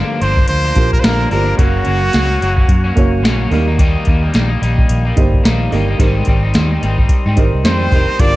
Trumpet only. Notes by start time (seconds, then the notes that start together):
0.21 C5
0.49 C5
0.93 A#4
1.00 C5
1.05 A#4
1.31 A#4
1.58 F#4
7.65 C5
8.20 D5